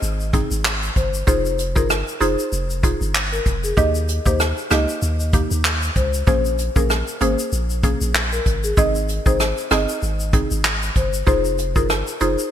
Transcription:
0.02 G#1, shaker
0.20 shaker
0.33 C4 D#4 G#4, kick, closed hi-hat, shaker
0.51 G#1, shaker
0.65 cross-stick, clap, shaker
0.83 shaker
0.96 G1 C5, kick, closed hi-hat, shaker
1.14 shaker
1.27 F1 D#4 F4 G#4 C5, kick, shaker
1.45 shaker
1.59 closed hi-hat, shaker
1.76 G1 D#4 F4 G#4 A#4, kick, shaker
1.90 cross-stick, shaker
2.08 shaker
2.20 F1 D#4 F4 G#4 C5, closed hi-hat, shaker
2.39 shaker
2.52 F1, shaker
2.70 shaker
2.83 D#4 F4 G#4, kick, closed hi-hat, shaker
3.01 G1, shaker
3.15 clap, shaker
3.32 A#4, shaker
3.46 F1, kick, closed hi-hat, shaker
3.64 G#4, shaker
3.77 D#2 A#3 D#4 G4 D#5, kick, shaker
3.95 shaker
4.09 closed hi-hat, shaker
4.26 D#2 A#3 D#4 G4 C5, kick, shaker
4.40 cross-stick, shaker
4.57 shaker
4.71 C#2 A#3 D#4 G4 D#5, cross-stick, closed hi-hat, shaker
4.89 shaker
5.02 D#2, shaker
5.20 shaker
5.33 A#3 D#4 G4, kick, closed hi-hat, shaker
5.51 D#2, shaker
5.65 cross-stick, clap, shaker
5.82 shaker
5.96 C#2 C5, kick, closed hi-hat, shaker
6.14 shaker
6.27 A#1 A#3 C#4 G#4 C5, kick, shaker
6.45 shaker
6.59 closed hi-hat, shaker
6.76 A#1 A#3 C#4 G#4 A#4, kick, shaker
6.90 cross-stick, shaker
7.08 shaker
7.21 G#1 A#3 C#4 G#4 C5, closed hi-hat, shaker
7.39 shaker
7.52 A#1, shaker
7.70 shaker
7.83 A#3 C#4 G#4, kick, closed hi-hat, shaker
8.01 A#1, shaker
8.15 cross-stick, clap, shaker
8.32 A#4, shaker
8.46 G#1, kick, closed hi-hat, shaker
8.64 G#4, shaker
8.77 G#1 C4 D#4 G#4 D#5, kick, shaker
8.95 shaker
9.09 closed hi-hat, shaker
9.26 G#1 C4 D#4 G#4 C5, kick, shaker
9.40 cross-stick, shaker
9.58 shaker
9.71 G1 C4 D#4 G#4 D#5, cross-stick, closed hi-hat, shaker
9.89 shaker
10.02 G#1, shaker
10.20 shaker
10.33 C4 D#4 G#4, kick, closed hi-hat, shaker
10.51 G#1, shaker
10.65 cross-stick, clap, shaker
10.82 shaker
10.96 G1 C5, kick, closed hi-hat, shaker
11.13 shaker
11.27 F1 D#4 F4 G#4 C5, kick, shaker
11.45 shaker
11.58 closed hi-hat, shaker
11.76 G1 D#4 F4 G#4 A#4, kick, shaker
11.90 cross-stick, shaker
12.07 shaker
12.21 F1 D#4 F4 G#4 C5, closed hi-hat, shaker
12.39 shaker

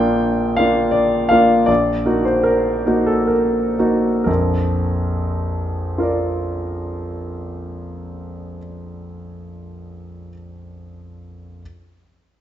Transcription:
Already playing: A#1 A#3 D4 F4 G5
0.56 A#3 D4 F4 F5
0.91 D5
1.29 A#3 D4 F4 F5
1.66 A#1 D5
2.06 A#3 D#4 F#4
2.25 C5
2.43 A#4
2.86 A#3 D#4 F#4
3.06 A4
3.27 A#4
3.79 A#3 D#4 F#4
4.24 A#1 F2 A#4
5.98 F4 A#4 D5

